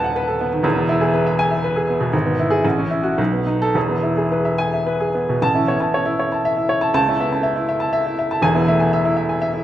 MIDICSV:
0, 0, Header, 1, 2, 480
1, 0, Start_track
1, 0, Key_signature, 4, "major"
1, 0, Tempo, 498339
1, 620, Time_signature, 3, 2, 24, 8
1, 2545, Tempo, 556070
1, 4945, Tempo, 498753
1, 4946, Key_signature, 3, "major"
1, 9001, End_track
2, 0, Start_track
2, 0, Title_t, "Upright piano"
2, 0, Program_c, 0, 0
2, 0, Control_c, 0, 64, 127
2, 0, Note_on_c, 0, 27, 74
2, 0, Note_on_c, 0, 39, 84
2, 0, Note_on_c, 0, 59, 61
2, 0, Note_on_c, 0, 66, 72
2, 0, Note_on_c, 0, 69, 70
2, 0, Note_on_c, 0, 71, 70
2, 0, Note_on_c, 0, 78, 78
2, 0, Note_on_c, 0, 81, 83
2, 39, Note_off_c, 0, 78, 0
2, 39, Note_on_c, 0, 78, 67
2, 103, Note_off_c, 0, 81, 0
2, 155, Note_off_c, 0, 71, 0
2, 155, Note_on_c, 0, 71, 76
2, 222, Note_off_c, 0, 78, 0
2, 265, Note_off_c, 0, 69, 0
2, 265, Note_on_c, 0, 69, 65
2, 340, Note_off_c, 0, 71, 0
2, 390, Note_off_c, 0, 59, 0
2, 390, Note_on_c, 0, 59, 70
2, 455, Note_off_c, 0, 69, 0
2, 502, Note_on_c, 0, 51, 66
2, 577, Note_off_c, 0, 59, 0
2, 585, Note_off_c, 0, 27, 0
2, 591, Note_off_c, 0, 39, 0
2, 606, Note_on_c, 0, 28, 83
2, 617, Note_on_c, 0, 40, 83
2, 621, Note_off_c, 0, 51, 0
2, 638, Control_c, 0, 64, 0
2, 640, Note_off_c, 0, 66, 0
2, 731, Note_on_c, 0, 59, 65
2, 808, Control_c, 0, 64, 127
2, 856, Note_on_c, 0, 64, 80
2, 924, Note_off_c, 0, 59, 0
2, 973, Note_on_c, 0, 68, 70
2, 1046, Note_off_c, 0, 64, 0
2, 1093, Note_on_c, 0, 71, 75
2, 1164, Note_off_c, 0, 68, 0
2, 1219, Note_on_c, 0, 76, 74
2, 1284, Note_off_c, 0, 71, 0
2, 1338, Note_on_c, 0, 80, 88
2, 1408, Note_off_c, 0, 76, 0
2, 1455, Note_on_c, 0, 76, 63
2, 1528, Note_off_c, 0, 80, 0
2, 1581, Note_on_c, 0, 71, 76
2, 1647, Note_off_c, 0, 76, 0
2, 1697, Note_on_c, 0, 68, 64
2, 1770, Note_off_c, 0, 71, 0
2, 1824, Note_on_c, 0, 59, 64
2, 1887, Note_off_c, 0, 68, 0
2, 1930, Note_on_c, 0, 47, 69
2, 2008, Note_off_c, 0, 28, 0
2, 2011, Note_off_c, 0, 59, 0
2, 2013, Note_off_c, 0, 40, 0
2, 2051, Note_on_c, 0, 32, 86
2, 2052, Note_off_c, 0, 47, 0
2, 2068, Control_c, 0, 64, 0
2, 2177, Note_on_c, 0, 59, 61
2, 2238, Control_c, 0, 64, 127
2, 2306, Note_on_c, 0, 64, 66
2, 2371, Note_off_c, 0, 59, 0
2, 2413, Note_on_c, 0, 68, 84
2, 2500, Note_off_c, 0, 64, 0
2, 2529, Note_off_c, 0, 32, 0
2, 2542, Note_off_c, 0, 68, 0
2, 2547, Note_on_c, 0, 33, 80
2, 2560, Control_c, 0, 64, 0
2, 2666, Note_on_c, 0, 61, 66
2, 2704, Control_c, 0, 64, 127
2, 2773, Note_on_c, 0, 64, 65
2, 2849, Note_off_c, 0, 61, 0
2, 2883, Note_on_c, 0, 66, 71
2, 2964, Note_off_c, 0, 64, 0
2, 3001, Note_off_c, 0, 33, 0
2, 3008, Note_off_c, 0, 66, 0
2, 3010, Note_on_c, 0, 35, 88
2, 3032, Control_c, 0, 64, 0
2, 3140, Note_on_c, 0, 59, 60
2, 3209, Control_c, 0, 64, 127
2, 3254, Note_on_c, 0, 63, 62
2, 3335, Note_off_c, 0, 59, 0
2, 3387, Note_on_c, 0, 69, 90
2, 3453, Note_off_c, 0, 63, 0
2, 3488, Note_off_c, 0, 35, 0
2, 3494, Note_on_c, 0, 28, 68
2, 3505, Note_on_c, 0, 40, 66
2, 3507, Note_off_c, 0, 69, 0
2, 3522, Control_c, 0, 64, 0
2, 3622, Note_on_c, 0, 59, 56
2, 3659, Control_c, 0, 64, 127
2, 3743, Note_on_c, 0, 64, 59
2, 3817, Note_off_c, 0, 59, 0
2, 3864, Note_on_c, 0, 68, 58
2, 3937, Note_off_c, 0, 64, 0
2, 3991, Note_on_c, 0, 71, 67
2, 4058, Note_off_c, 0, 68, 0
2, 4105, Note_on_c, 0, 76, 59
2, 4182, Note_off_c, 0, 71, 0
2, 4220, Note_on_c, 0, 80, 78
2, 4300, Note_off_c, 0, 76, 0
2, 4350, Note_on_c, 0, 76, 52
2, 4418, Note_off_c, 0, 80, 0
2, 4464, Note_on_c, 0, 71, 68
2, 4543, Note_off_c, 0, 76, 0
2, 4583, Note_on_c, 0, 68, 59
2, 4661, Note_off_c, 0, 71, 0
2, 4705, Note_on_c, 0, 59, 57
2, 4782, Note_off_c, 0, 68, 0
2, 4834, Note_on_c, 0, 47, 60
2, 4897, Note_off_c, 0, 59, 0
2, 4906, Note_off_c, 0, 28, 0
2, 4912, Note_off_c, 0, 40, 0
2, 4944, Note_on_c, 0, 33, 69
2, 4945, Note_on_c, 0, 81, 92
2, 4947, Note_off_c, 0, 47, 0
2, 4963, Control_c, 0, 64, 0
2, 5063, Note_on_c, 0, 61, 59
2, 5070, Note_on_c, 0, 64, 62
2, 5143, Note_off_c, 0, 81, 0
2, 5144, Control_c, 0, 64, 127
2, 5194, Note_on_c, 0, 73, 65
2, 5195, Note_on_c, 0, 59, 55
2, 5264, Note_off_c, 0, 61, 0
2, 5267, Note_off_c, 0, 64, 0
2, 5311, Note_on_c, 0, 61, 58
2, 5312, Note_on_c, 0, 81, 61
2, 5317, Note_off_c, 0, 59, 0
2, 5391, Note_off_c, 0, 73, 0
2, 5445, Note_on_c, 0, 73, 71
2, 5511, Note_off_c, 0, 61, 0
2, 5512, Note_off_c, 0, 81, 0
2, 5553, Note_on_c, 0, 64, 74
2, 5639, Note_off_c, 0, 73, 0
2, 5688, Note_on_c, 0, 73, 62
2, 5755, Note_off_c, 0, 64, 0
2, 5810, Note_on_c, 0, 81, 54
2, 5883, Note_off_c, 0, 73, 0
2, 5935, Note_on_c, 0, 76, 75
2, 6003, Note_off_c, 0, 81, 0
2, 6048, Note_on_c, 0, 64, 60
2, 6125, Note_off_c, 0, 76, 0
2, 6166, Note_on_c, 0, 73, 71
2, 6240, Note_off_c, 0, 64, 0
2, 6283, Note_on_c, 0, 81, 68
2, 6358, Note_off_c, 0, 73, 0
2, 6368, Note_off_c, 0, 33, 0
2, 6395, Note_off_c, 0, 81, 0
2, 6404, Note_on_c, 0, 37, 79
2, 6409, Note_on_c, 0, 81, 95
2, 6422, Control_c, 0, 64, 0
2, 6544, Note_on_c, 0, 61, 61
2, 6545, Note_on_c, 0, 64, 62
2, 6555, Control_c, 0, 64, 127
2, 6600, Note_off_c, 0, 81, 0
2, 6658, Note_on_c, 0, 59, 57
2, 6661, Note_on_c, 0, 76, 69
2, 6728, Note_off_c, 0, 61, 0
2, 6728, Note_off_c, 0, 64, 0
2, 6772, Note_on_c, 0, 61, 52
2, 6773, Note_off_c, 0, 59, 0
2, 6776, Note_on_c, 0, 81, 59
2, 6846, Note_off_c, 0, 76, 0
2, 6878, Note_on_c, 0, 76, 67
2, 6961, Note_off_c, 0, 61, 0
2, 6964, Note_off_c, 0, 81, 0
2, 7000, Note_on_c, 0, 64, 67
2, 7074, Note_off_c, 0, 76, 0
2, 7123, Note_on_c, 0, 76, 69
2, 7193, Note_off_c, 0, 64, 0
2, 7233, Note_on_c, 0, 81, 64
2, 7314, Note_off_c, 0, 76, 0
2, 7356, Note_on_c, 0, 76, 80
2, 7428, Note_off_c, 0, 81, 0
2, 7484, Note_on_c, 0, 64, 61
2, 7549, Note_off_c, 0, 76, 0
2, 7606, Note_on_c, 0, 76, 68
2, 7671, Note_off_c, 0, 64, 0
2, 7724, Note_on_c, 0, 81, 67
2, 7791, Note_off_c, 0, 76, 0
2, 7795, Note_off_c, 0, 37, 0
2, 7823, Note_on_c, 0, 28, 75
2, 7832, Note_on_c, 0, 40, 76
2, 7834, Note_on_c, 0, 80, 87
2, 7839, Note_off_c, 0, 81, 0
2, 7852, Control_c, 0, 64, 0
2, 7953, Note_on_c, 0, 64, 63
2, 7957, Note_on_c, 0, 59, 62
2, 8020, Control_c, 0, 64, 127
2, 8025, Note_off_c, 0, 80, 0
2, 8083, Note_on_c, 0, 76, 69
2, 8084, Note_on_c, 0, 57, 53
2, 8146, Note_off_c, 0, 64, 0
2, 8148, Note_off_c, 0, 59, 0
2, 8196, Note_on_c, 0, 59, 59
2, 8196, Note_on_c, 0, 80, 60
2, 8200, Note_off_c, 0, 57, 0
2, 8272, Note_off_c, 0, 76, 0
2, 8321, Note_on_c, 0, 76, 76
2, 8390, Note_off_c, 0, 59, 0
2, 8390, Note_off_c, 0, 80, 0
2, 8437, Note_on_c, 0, 64, 64
2, 8512, Note_off_c, 0, 76, 0
2, 8548, Note_on_c, 0, 76, 61
2, 8629, Note_off_c, 0, 64, 0
2, 8669, Note_on_c, 0, 80, 57
2, 8742, Note_off_c, 0, 76, 0
2, 8788, Note_on_c, 0, 76, 77
2, 8860, Note_off_c, 0, 80, 0
2, 8901, Note_on_c, 0, 64, 59
2, 8977, Note_off_c, 0, 76, 0
2, 9001, Note_off_c, 0, 28, 0
2, 9001, Note_off_c, 0, 40, 0
2, 9001, Note_off_c, 0, 64, 0
2, 9001, End_track
0, 0, End_of_file